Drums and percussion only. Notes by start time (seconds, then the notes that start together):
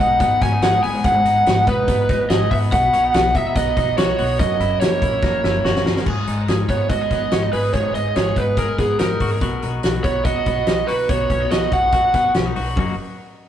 0.20 kick, closed hi-hat
0.42 kick, snare, closed hi-hat
0.62 snare, closed hi-hat
0.83 open hi-hat
1.04 kick, closed hi-hat
1.25 closed hi-hat
1.46 snare, closed hi-hat
1.67 kick, closed hi-hat
1.88 kick, closed hi-hat
2.09 kick, snare, closed hi-hat
2.30 snare, closed hi-hat
2.51 kick, open hi-hat
2.72 kick, closed hi-hat
2.93 closed hi-hat
3.14 snare, closed hi-hat
3.35 kick, closed hi-hat
3.56 kick, closed hi-hat
3.77 kick, snare, closed hi-hat
3.98 snare, closed hi-hat
4.18 open hi-hat
4.39 kick, closed hi-hat
4.60 closed hi-hat
4.81 snare, closed hi-hat
5.02 kick, closed hi-hat
5.23 kick, snare
5.44 snare
5.65 snare
5.76 snare
5.86 snare
5.96 snare
6.06 kick, crash
6.27 closed hi-hat
6.48 snare, closed hi-hat
6.69 kick, closed hi-hat
6.89 kick, closed hi-hat
7.11 kick, snare, closed hi-hat
7.31 snare, closed hi-hat
7.53 open hi-hat
7.74 kick, closed hi-hat
7.95 closed hi-hat
8.16 snare, closed hi-hat
8.36 kick, closed hi-hat
8.57 kick, closed hi-hat
8.78 kick, snare, closed hi-hat
8.99 snare, closed hi-hat
9.20 kick, open hi-hat
9.41 kick, closed hi-hat
9.62 closed hi-hat
9.83 snare, closed hi-hat
10.04 kick, closed hi-hat
10.25 kick, closed hi-hat
10.46 kick, closed hi-hat
10.67 snare, closed hi-hat
10.88 open hi-hat
11.09 kick, closed hi-hat
11.30 kick, closed hi-hat
11.51 snare, closed hi-hat
11.72 kick, closed hi-hat
11.92 kick, closed hi-hat
12.14 kick, snare, closed hi-hat
12.34 snare, closed hi-hat
12.56 open hi-hat
12.77 kick